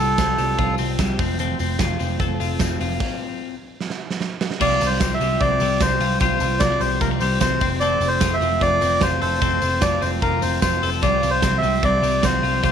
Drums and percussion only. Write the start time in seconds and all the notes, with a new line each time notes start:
0.18 kick, snare, closed hi-hat, tambourine
0.38 open hi-hat, tambourine
0.59 kick, closed hi-hat
0.78 open hi-hat, tambourine
0.99 kick, snare, closed hi-hat, tambourine
1.19 kick, open hi-hat, tambourine
1.39 closed hi-hat, tambourine
1.59 open hi-hat, tambourine
1.79 kick, snare, closed hi-hat, tambourine
1.99 open hi-hat, tambourine
2.20 kick, closed hi-hat, tambourine
2.40 open hi-hat, tambourine
2.59 kick, snare, tambourine
2.80 open hi-hat, tambourine
3.00 kick, crash
3.81 snare
3.90 snare
4.10 snare
4.21 snare
4.41 snare
4.51 snare
4.61 kick, crash, tambourine
4.81 open hi-hat, tambourine
5.00 kick, snare, closed hi-hat, tambourine
5.21 open hi-hat, tambourine
5.41 kick, closed hi-hat
5.60 open hi-hat, tambourine
5.81 kick, snare, closed hi-hat, tambourine
6.00 open hi-hat, tambourine
6.20 kick, closed hi-hat, tambourine
6.40 open hi-hat, tambourine
6.60 kick, snare, closed hi-hat, tambourine
6.81 open hi-hat, tambourine
7.01 kick, closed hi-hat, tambourine
7.20 open hi-hat, tambourine
7.41 kick, snare, closed hi-hat, tambourine
7.61 kick, open hi-hat, tambourine
7.81 closed hi-hat, tambourine
8.01 open hi-hat, tambourine
8.21 kick, snare, closed hi-hat, tambourine
8.41 open hi-hat, tambourine
8.61 kick, closed hi-hat, tambourine
8.81 open hi-hat, tambourine
9.01 kick, snare, closed hi-hat, tambourine
9.22 open hi-hat
9.42 kick, closed hi-hat, tambourine
9.62 open hi-hat, tambourine
9.82 kick, snare, closed hi-hat, tambourine
10.02 open hi-hat, tambourine
10.22 kick, closed hi-hat
10.42 open hi-hat, tambourine
10.62 kick, snare, closed hi-hat, tambourine
10.83 open hi-hat, tambourine
11.03 kick, closed hi-hat, tambourine
11.23 open hi-hat, tambourine
11.42 kick, snare, closed hi-hat, tambourine
11.63 open hi-hat, tambourine
11.83 kick, closed hi-hat
12.03 open hi-hat, tambourine
12.23 kick, snare, closed hi-hat, tambourine
12.44 open hi-hat
12.64 kick, closed hi-hat, tambourine